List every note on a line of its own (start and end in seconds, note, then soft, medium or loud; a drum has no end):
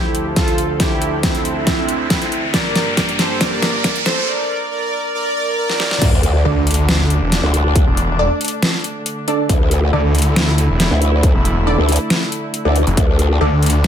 0.00 2.50 D2 medium
0.00 4.24 D3 medium
0.00 2.50 F3 medium
0.00 0.28 E4 medium
0.00 0.28 G4 loud
0.00 2.50 A4 medium
0.00 riser medium
0.15 closed hi-hat medium
0.36 0.69 F4 medium
0.36 0.69 A4 loud
0.36 kick medium
0.36 snare medium
0.36 closed hi-hat medium
0.48 closed hi-hat soft
0.58 closed hi-hat medium
0.80 1.12 E4 medium
0.80 1.12 G4 medium
0.80 kick medium
0.80 snare medium
0.80 closed hi-hat medium
1.02 closed hi-hat medium
1.23 2.46 C4 medium
1.23 2.46 E4 loud
1.23 kick medium
1.23 snare medium
1.23 closed hi-hat medium
1.35 closed hi-hat soft
1.45 closed hi-hat medium
1.67 kick medium
1.67 snare medium
1.67 closed hi-hat medium
1.89 closed hi-hat medium
2.10 kick medium
2.10 snare medium
2.10 closed hi-hat medium
2.22 closed hi-hat soft
2.32 closed hi-hat medium
2.54 4.26 G2 medium
2.54 4.26 A#3 medium
2.54 4.26 G4 medium
2.54 3.11 A#4 medium
2.54 3.11 D5 medium
2.54 kick medium
2.54 snare medium
2.54 closed hi-hat medium
2.76 snare medium
2.76 closed hi-hat medium
2.97 kick loud
2.97 snare medium
2.97 closed hi-hat medium
3.09 closed hi-hat soft
3.19 3.39 A4 medium
3.19 3.39 C5 medium
3.19 snare medium
3.19 closed hi-hat medium
3.41 3.98 A#4 medium
3.41 3.98 D5 loud
3.41 kick loud
3.41 snare medium
3.41 closed hi-hat medium
3.62 snare medium
3.62 closed hi-hat medium
3.84 kick loud
3.84 snare medium
3.84 closed hi-hat medium
3.96 closed hi-hat soft
4.06 4.26 A4 medium
4.06 4.26 C5 medium
4.06 snare medium
4.06 closed hi-hat medium
4.28 4.70 A#4 medium
4.28 4.70 D5 loud
4.71 5.13 A#4 medium
4.71 5.13 D5 loud
5.15 5.35 A#4 medium
5.15 5.35 D5 loud
5.36 5.56 A#4 medium
5.36 5.57 D5 loud
5.58 5.78 A#4 medium
5.58 5.78 D5 loud
5.70 snare medium
5.80 6.00 A#4 medium
5.80 6.00 D5 loud
5.80 snare medium
5.91 snare medium
6.02 6.43 D2 loud
6.02 13.87 D3 medium
6.02 13.87 A3 medium
6.02 9.48 D4 medium
6.02 kick loud
6.02 closed hi-hat medium
6.02 crash loud
6.02 sub drop medium
6.23 closed hi-hat medium
6.45 6.55 D2 medium
6.45 6.62 D4 medium
6.45 6.62 A4 medium
6.45 6.62 D5 loud
6.56 7.20 D2 loud
6.67 closed hi-hat medium
6.71 closed hi-hat medium
6.74 closed hi-hat medium
6.89 snare loud
6.89 closed hi-hat medium
7.10 closed hi-hat medium
7.22 7.42 E1 loud
7.32 snare medium
7.32 closed hi-hat medium
7.43 7.85 D2 loud
7.54 closed hi-hat medium
7.76 kick loud
7.76 closed hi-hat medium
7.87 8.29 E1 loud
7.97 closed hi-hat medium
8.19 8.30 D4 loud
8.19 8.30 A4 medium
8.19 8.30 D5 loud
8.41 closed hi-hat medium
8.45 closed hi-hat medium
8.48 closed hi-hat medium
8.63 snare loud
8.63 closed hi-hat medium
8.84 closed hi-hat medium
9.06 closed hi-hat medium
9.28 9.90 D4 loud
9.28 9.90 A4 medium
9.28 9.90 D5 loud
9.28 closed hi-hat medium
9.49 9.91 D2 loud
9.49 12.96 E4 medium
9.49 kick loud
9.49 closed hi-hat medium
9.71 closed hi-hat medium
9.93 10.02 D2 medium
9.93 10.10 D4 medium
9.93 10.10 A4 medium
9.93 10.10 D5 loud
10.04 10.68 D2 loud
10.15 closed hi-hat medium
10.18 closed hi-hat medium
10.22 closed hi-hat medium
10.36 snare loud
10.36 closed hi-hat medium
10.58 closed hi-hat medium
10.70 10.89 E1 loud
10.80 snare medium
10.80 closed hi-hat medium
10.91 11.33 D2 medium
11.02 closed hi-hat medium
11.23 kick loud
11.23 closed hi-hat medium
11.35 11.76 E1 medium
11.45 closed hi-hat medium
11.67 11.78 D4 loud
11.67 11.78 A4 medium
11.67 11.78 D5 loud
11.78 11.98 D2 medium
11.89 closed hi-hat medium
11.92 closed hi-hat medium
11.96 closed hi-hat medium
12.10 snare loud
12.10 closed hi-hat medium
12.32 closed hi-hat medium
12.54 closed hi-hat medium
12.65 12.85 D2 loud
12.65 12.81 D4 medium
12.65 12.81 A4 medium
12.65 12.81 D5 medium
12.76 closed hi-hat medium
12.87 12.96 F1 loud
12.87 closed hi-hat soft
12.97 13.39 D2 medium
12.97 13.87 D4 medium
12.97 kick loud
12.97 closed hi-hat medium
13.19 closed hi-hat medium
13.41 13.50 D2 medium
13.41 13.57 D4 medium
13.41 13.57 A4 medium
13.41 13.57 D5 loud
13.52 13.87 D2 loud
13.63 closed hi-hat soft
13.66 closed hi-hat medium
13.70 closed hi-hat medium